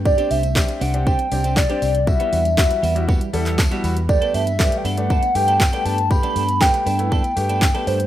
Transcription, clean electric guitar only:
\new Staff \with { instrumentName = "Clean electric guitar" } { \time 4/4 \key g \major \tempo 4 = 119 r16 <c' d' g'>16 <c' d' g'>16 r8. <c' d' g'>8 <c' d' g'>8 r16 <c' d' g'>16 r16 <c' d' g'>16 <c' d' g'>16 r16 | r16 <g b fis'>16 <g b fis'>16 r8. <g b fis'>8 <g b fis'>8 r16 <g b fis'>16 r16 <g b fis'>16 <g b fis'>16 r16 | r16 <b d' a'>16 <b d' a'>16 r8. <b d' a'>8 <b d' a'>8 r16 <b d' a'>16 r16 <b d' a'>16 <b d' a'>16 r16 | r16 <b d' a'>16 <b d' a'>16 r8. <b d' a'>8 <b d' a'>8 r16 <b d' a'>16 r16 <b d' a'>16 <b d' a'>16 r16 | }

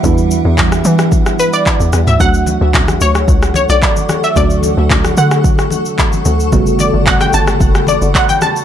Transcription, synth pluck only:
\new Staff \with { instrumentName = "Synth pluck" } { \time 4/4 \key d \major \tempo 4 = 111 r2 r8 b'16 d''4 e''16 | fis''4. cis''4 cis''16 d''4 e''16 | d''4. fis''2 r8 | r8 d''8 fis''16 g''16 a''8 r8 d''8 fis''16 g''16 a''8 | }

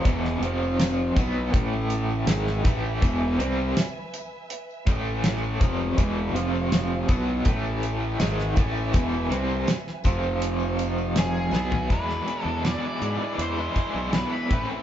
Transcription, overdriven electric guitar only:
\new Staff \with { instrumentName = "Overdriven electric guitar" } { \clef bass \time 4/4 \tempo 4 = 81 <e, b, e>8 <f, c f>4 <b, fis b>8 <a, e a>4 <gis, dis gis>8 <a, e a>8 | <e, b, e>8 <c g c'>8 r4. <a, e a>4 <f, c f>8 | <e, b, e>8 <f, c f>4 <b, fis b>8 <a, e a>4 <gis, dis gis>8 <a, e a>8 | <e, b, e>8 <c g c'>8 r8 <f, c f>2 <b, fis b>8 |
<e, b, e gis d' e'>8 <e gis d' e'>16 <e gis d' e'>16 <e, b, e gis d' e'>16 <e gis d' e'>16 <e gis d' e'>8. <e gis d' e'>16 <e gis d' e'>16 <e gis d' e'>16 <e, b, e gis d' e'>8 <a, e a c' e'>16 <a c' e'>16 | }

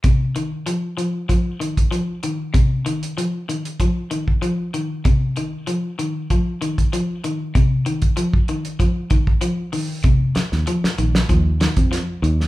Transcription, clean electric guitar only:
\new Staff \with { instrumentName = "Clean electric guitar" } { \clef bass \time 4/4 \key c \phrygian \tempo 4 = 96 c8 ees8 f8 f8 f8 ees8 f8 ees8 | c8 ees8 f8 ees8 f8 ees8 f8 ees8 | c8 ees8 f8 ees8 f8 ees8 f8 ees8 | c8 ees8 f8 ees8 f8 ees8 f8 ees8 |
c8 r8 f8 ees8 f8 ees8 f8 ees8 | }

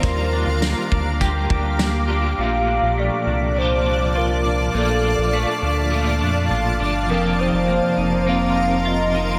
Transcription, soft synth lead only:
\new Staff \with { instrumentName = "Soft synth lead" } { \time 4/4 \key bes \major \tempo 4 = 102 bes'4. r2 r8 | f''4 d''4 c''4 bes'4 | a'2 r2 | bes'8 c''4. f''4 ees''4 | }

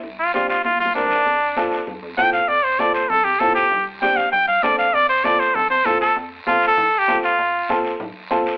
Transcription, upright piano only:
\new Staff \with { instrumentName = "Upright piano" } { \time 4/4 \key f \major \tempo 4 = 196 r4 <c' d' g'>8 r4. <c' d' bes'>8 r8 | r4 <c' f' a'>8 r4. <c' f' a'>8 r8 | r4 <c' f' a'>8 r4. <c' f' a'>8 r8 | r4 <c' d' g'>8 r4. <c' d' a'>8 r8 |
r4 <c' f' a'>8 r4. <c' f' a'>8 r8 | r4 <c' f' a'>8 r4. <c' f' a'>8 r8 | r4 <c' f' a'>8 r4. <c' f' a'>8 r8 | }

